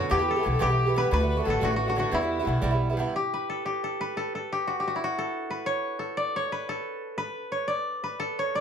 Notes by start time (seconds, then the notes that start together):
Already playing: D3 C#4 F#4 A4 B4
0.10 E2 G2 E3 B3 G4
0.19 E3 B3 G4
0.28 A4
0.36 E3 B3 G4 A4
0.43 B1 G2 E3 B3 G4
0.49 A4
0.59 B1 G2 E3 B3 G4
0.69 E3 B3 G4
0.87 E3 B3 G4
0.94 G2 E3 B3 G4 B4
1.11 D2 A2 D3 A3 F#4 B4
1.20 D3 A3 F#4
1.28 B4
1.37 D3 A3 F#4
1.42 A2 D3 A4
1.47 A1 A3 F#4 A4
1.59 A1 A2 D3 A3 F#4
1.65 F#4
1.71 D3 A3 F#4
1.76 F#4
1.83 F#4
1.88 D3 A3 F#4
1.94 A2 D3 A3 F#4
1.99 F#4
2.12 E2 G2 G3 B3 E4
2.21 G3 B3 E4
2.39 G3 B3 E4
2.45 B1 G2 G3 B3 E4
2.62 B1 G2 G3 B3 E4
2.71 G3 B3 E4
2.90 G3 B3 E4
2.97 G2 G3 B3 E4
3.16 G4
3.34 B4
3.50 A4
3.66 G4
3.84 A4
4.01 B4
4.17 A4
4.35 A4
4.52 G4
4.67 F#4
4.80 G4
4.88 F#4
4.96 E4
5.04 F#4
5.18 A4
5.50 B4
5.66 C#5
5.99 A4
6.17 D5
6.36 C#5
6.52 B4
6.69 A4
7.18 B4
7.52 C#5
7.68 D5
8.04 B4
8.20 A4
8.39 C#5
8.55 D5